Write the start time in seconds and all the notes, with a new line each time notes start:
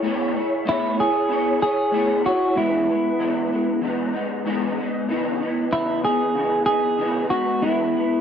0.02 A3 B3 E4 G#4 C#5
0.34 E4 G#4 C#5
0.65 A3 B3 E4 G#4 C#5
0.97 E4 G#4 C#5
1.29 B3 E4 G#4 C#5
1.60 E4 G#4 C#5
1.91 A3 B3 E4 G#4 C#5
2.23 E4 F#4 G#4 C#5
2.55 G#2 E3 G#3 B3 E4
2.89 G#3 B3
3.19 G#2 E3 G#3 B3
3.52 G#3 B3
3.81 E3 G#3 B3 D#4
4.13 G#3 B3 D#4
4.44 G#2 E3 G#3 B3 D#4
4.76 G#3 B3 D#4
5.08 C#3 E3 B3 D#4
5.40 E3 B3 D#4
5.72 C#3 E3 B3 E4
6.03 E3 B3 D#4 G#4
6.34 C#3 E3 B3 D#4
6.66 E3 B3 D#4 G#4
6.98 C#3 E3 B3 D#4
7.29 G#3 B3 D#4 F#4
7.61 E3 G#3 B3 E4
7.94 G#3 B3